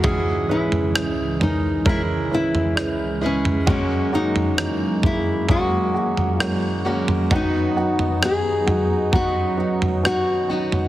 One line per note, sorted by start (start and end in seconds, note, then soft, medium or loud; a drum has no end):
0.00 3.63 C#2 soft
0.00 3.63 G#2 soft
0.00 1.85 C#3 medium
0.00 3.64 C#3 medium
0.00 3.64 E3 medium
0.00 1.84 E3 medium
0.00 0.47 G#3 medium
0.00 7.27 G#3 medium
0.00 0.47 C#4 medium
0.00 0.47 E4 medium
0.00 0.47 F#4 medium
0.00 0.47 G#4 medium
0.00 kick medium
0.04 3.64 C#2 medium
0.04 1.86 C#4 medium
0.04 1.87 G#4 medium
0.04 floor tom medium
0.49 0.92 G#3 medium
0.49 0.92 C#4 medium
0.49 0.92 E4 medium
0.49 1.37 E4 medium
0.49 0.92 B4 medium
0.72 floor tom soft
0.94 1.37 G#3 soft
0.94 1.38 C#4 soft
0.94 1.38 E4 soft
0.94 1.38 G#4 medium
0.94 cross-stick medium
1.40 1.83 E3 medium
1.40 1.83 G#3 medium
1.40 1.83 C#4 soft
1.40 1.88 D#4 medium
1.40 1.83 A#4 medium
1.40 floor tom medium
1.85 3.22 E3 soft
1.85 2.29 G#3 medium
1.85 2.29 C#4 medium
1.85 3.23 C#4 soft
1.85 2.29 E4 medium
1.85 3.22 E4 soft
1.85 3.21 G#4 soft
1.85 2.29 A#4 medium
1.85 kick medium
1.85 floor tom soft
1.89 2.01 E4 medium
2.31 2.74 G#3 medium
2.31 2.74 C#4 medium
2.31 2.74 E4 medium
2.31 3.20 E4 medium
2.31 2.74 B4 medium
2.55 floor tom soft
2.75 3.19 G#3 medium
2.75 3.19 C#4 medium
2.75 3.19 E4 medium
2.75 3.19 B4 medium
2.75 cross-stick medium
3.21 3.64 G#3 medium
3.21 3.65 C#4 soft
3.21 3.68 C#4 soft
3.21 3.65 E4 medium
3.21 3.68 E4 soft
3.21 3.67 G#4 soft
3.21 3.65 B4 medium
3.26 3.69 C#4 medium
3.45 floor tom medium
3.66 7.27 F#2 medium
3.66 5.49 F#2 medium
3.66 10.88 F#2 medium
3.66 7.26 C#3 soft
3.66 5.49 C#3 medium
3.66 10.88 F#3 medium
3.66 4.10 G#3 medium
3.66 5.47 G#3 medium
3.66 4.10 A#3 medium
3.66 7.28 A#3 medium
3.66 5.48 A#3 medium
3.66 4.10 C#4 medium
3.66 5.49 C#4 medium
3.66 4.14 C#4 medium
3.66 4.10 F#4 medium
3.66 5.50 F#4 medium
3.66 kick medium
3.66 floor tom medium
4.12 4.56 G#3 medium
4.12 4.56 A#3 medium
4.12 4.56 C#4 medium
4.12 5.07 D#4 medium
4.12 4.56 F#4 medium
4.36 floor tom soft
4.57 5.01 E3 medium
4.57 5.01 G#3 medium
4.57 5.01 A#3 medium
4.57 5.01 C#4 soft
4.57 cross-stick loud
5.03 5.46 G#3 medium
5.03 5.47 A#3 medium
5.03 5.47 C#4 soft
5.03 5.47 E4 medium
5.03 kick medium
5.03 floor tom medium
5.48 6.85 G#3 soft
5.48 5.92 G#3 medium
5.48 5.92 A#3 medium
5.48 6.85 A#3 soft
5.48 5.92 C#4 medium
5.48 6.85 C#4 medium
5.48 6.84 F#4 medium
5.48 6.40 F#4 medium
5.48 5.92 G#4 medium
5.48 kick medium
5.48 floor tom medium
5.93 6.37 G#3 medium
5.93 6.37 A#3 medium
5.93 6.38 C#4 medium
5.93 6.38 F#4 medium
6.17 floor tom soft
6.40 6.83 G#3 medium
6.40 6.83 A#3 medium
6.40 6.83 C#4 medium
6.40 6.82 E4 medium
6.40 6.83 F#4 medium
6.40 cross-stick medium
6.85 7.29 G#3 medium
6.85 7.31 G#3 soft
6.85 7.29 A#3 medium
6.85 7.31 A#3 soft
6.85 7.31 C#4 soft
6.85 7.29 C#4 medium
6.85 7.31 F#4 soft
6.85 7.29 F#4 medium
7.08 floor tom medium
7.30 9.12 F#2 medium
7.30 10.88 F#2 medium
7.30 9.13 D#3 medium
7.30 7.74 F#3 medium
7.30 9.11 F#3 medium
7.30 7.74 B3 medium
7.30 9.13 B3 medium
7.30 9.12 B3 medium
7.30 10.88 D#4 medium
7.30 7.75 D#4 medium
7.30 9.13 D#4 medium
7.30 7.75 F#4 medium
7.30 9.13 F#4 medium
7.30 kick medium
7.30 floor tom medium
7.36 8.27 D#4 medium
7.76 8.19 F#3 medium
7.76 8.19 B3 medium
7.76 8.20 D#4 medium
7.76 8.20 F#4 medium
7.99 floor tom soft
8.22 8.64 F#3 medium
8.22 8.65 B3 medium
8.22 8.65 D#4 medium
8.22 8.65 G#4 medium
8.22 9.15 G#4 medium
8.22 cross-stick medium
8.66 9.10 F#3 medium
8.66 9.10 B3 medium
8.66 9.10 D#4 soft
8.66 9.10 F#4 medium
8.66 floor tom medium
9.12 9.55 F#3 medium
9.12 10.49 F#3 soft
9.12 9.56 B3 medium
9.12 10.51 B3 soft
9.12 10.88 C#4 medium
9.12 9.56 D#4 medium
9.12 10.49 D#4 soft
9.12 9.56 F#4 medium
9.12 10.48 F#4 medium
9.12 10.05 F#4 medium
9.12 kick medium
9.12 floor tom medium
9.57 10.01 F#3 medium
9.57 10.01 B3 medium
9.57 10.01 D#4 medium
9.57 10.01 F#4 medium
9.82 floor tom soft
10.03 10.46 F#3 medium
10.03 10.47 B3 medium
10.03 10.47 D#4 medium
10.03 10.47 F#4 medium
10.03 10.88 F#4 medium
10.03 cross-stick medium
10.49 10.88 F#3 medium
10.49 10.88 F#3 soft
10.49 10.88 B3 medium
10.49 10.88 B3 soft
10.49 10.88 D#4 medium
10.49 10.88 D#4 soft
10.49 10.88 F#4 medium
10.49 10.88 F#4 soft
10.72 floor tom soft